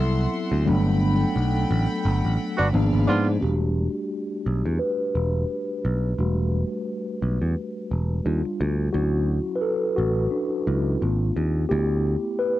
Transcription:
Already playing: picked electric bass C2, tine electric piano F#3 B3 C4 E4, string section A4 E5 F#5 C6
0.52 picked electric bass D2
0.65 picked electric bass G1, tine electric piano F#3 A3 B3 D4, string section A4 F#5 G5 B5
1.36 picked electric bass B1
1.71 picked electric bass A1
2.05 picked electric bass G1
2.25 picked electric bass A1
2.57 picked electric bass G1, horn section B3 D4 F#4
2.73 picked electric bass G#1, tine electric piano F3 A#3 B3 D4, string section G#4 D5 F5
2.93 picked electric bass G#1
3.07 picked electric bass G#2, horn section B3 D4 F4
3.41 picked electric bass E1, tine electric piano G3 A3 D4 F#4 G4
4.46 picked electric bass B1
4.66 picked electric bass E2
4.79 tine electric piano B4
5.15 picked electric bass E1
5.85 picked electric bass B1
6.18 picked electric bass E1, tine electric piano G3 A3 D4 F#4
7.22 picked electric bass B1
7.42 picked electric bass E2
7.91 picked electric bass E1
8.24 picked electric bass D#2, tine electric piano G3 D4 F4
8.45 muted picked electric bass stroke
8.60 picked electric bass D2
8.93 picked electric bass D2, tine electric piano F#3 C#4 E4 F#4
9.56 tine electric piano B4
9.62 tine electric piano A4
9.96 picked electric bass A1, tine electric piano F#4
10.31 tine electric piano D4
10.66 picked electric bass C#2, tine electric piano F#3 C#4 E4
11.01 picked electric bass G#1, tine electric piano A#3 C4 F4
11.36 picked electric bass D#2
11.69 picked electric bass D2, tine electric piano A3 B3 E4 G4
12.39 tine electric piano B4

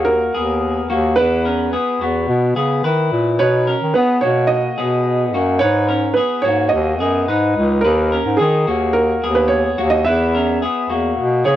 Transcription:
Already playing: bass clarinet D#2, clean electric guitar A#3 F#4
0.05 upright piano A#4
0.34 bass clarinet D#2, clean electric guitar B3 G#4
0.90 bass clarinet D#2, clean electric guitar A#3 F#4
1.16 bass clarinet E2, clean electric guitar E4 B4, upright piano B4
1.45 clean electric guitar C#4 A#4
1.73 clean electric guitar B3 G#4
2.01 bass clarinet E2, clean electric guitar B3 F#4
2.28 bass clarinet B2
2.56 bass clarinet C#3, clean electric guitar B3 G#4
2.84 bass clarinet D#3, clean electric guitar E4 B4
3.12 bass clarinet A#2
3.39 bass clarinet B2, clean electric guitar D#4 B4, upright piano C#5
3.67 clean electric guitar C#4 A#4
3.82 bass clarinet D#3
3.94 clean electric guitar B3 G#4, bass clarinet B3, upright piano B4
4.21 bass clarinet B2, clean electric guitar A#3 F#4, upright piano C#5
4.47 upright piano D#5
4.78 bass clarinet B2, clean electric guitar B3 G#4
5.34 bass clarinet F#2, clean electric guitar A#3 F#4
5.59 bass clarinet G#2, clean electric guitar D#4 B4, upright piano C#5
5.89 clean electric guitar C#4 A#4
6.14 clean electric guitar B3 G#4, upright piano B4
6.42 bass clarinet G#2, clean electric guitar A#3 F#4, upright piano C#5
6.69 upright piano D#5
6.74 bass clarinet D#2
7.00 bass clarinet F#2, clean electric guitar B3 G#4
7.28 bass clarinet G#2, clean electric guitar D#4 B4
7.57 bass clarinet C#2
7.81 bass clarinet D#2, upright piano A#4, clean electric guitar B4
7.85 clean electric guitar D#4
8.12 clean electric guitar C#4 A#4
8.26 bass clarinet G#2
8.37 bass clarinet D#3, clean electric guitar D#4 G#4, upright piano G#4
8.67 bass clarinet D#2, clean electric guitar A#3 F#4
8.93 upright piano A#4
9.24 bass clarinet D#2, clean electric guitar B3 G#4
9.35 upright piano B4
9.48 upright piano C#5
9.78 bass clarinet D#2, clean electric guitar A#3 F#4
9.90 upright piano D#5
10.05 bass clarinet E2, clean electric guitar E4 B4, upright piano E5
10.35 clean electric guitar C#4 A#4
10.62 clean electric guitar B3 G#4
10.90 bass clarinet E2, clean electric guitar A#3 F#4
11.18 bass clarinet B2
11.45 bass clarinet C#3, clean electric guitar B3 G#4, upright piano C#5

